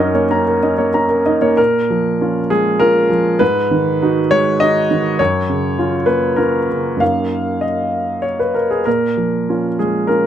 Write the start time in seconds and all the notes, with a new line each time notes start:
Already playing: F#2 D#4 A#4 C#5
0.00 C#4 D#5
0.15 A#3 C#5
0.31 C#4 A#5
0.47 A#4
0.63 C#4 D#5
0.78 A#3 C#5
0.94 C#4 A#5
1.09 A#4
1.26 D#4 D#5
1.42 A#3 C#5
1.57 A#2 A#4
1.90 F3
2.21 C#4 F4
2.50 G#3 G#4
2.79 C#4 F4 A#4
3.10 F3
3.39 G#2 B4
3.71 D#3
4.02 D#4 F#4
4.31 G#3 C#5
4.60 D#4 F#4 D#5
4.91 D#3
5.19 F#2 C#5
5.49 C#3
5.79 C#4 F4
6.06 A#3 B4
6.36 C#4 F4 A#4
6.70 C#3
6.97 F#2 A#3 C#4 F5
7.01 D#4
7.61 D#5
8.22 C#5
8.39 B4
8.54 A#4
8.71 G#4
8.85 A#2 A#4
9.17 F3
9.49 C#4 F4
9.79 G#3 G#4
10.07 C#4 F4 A#4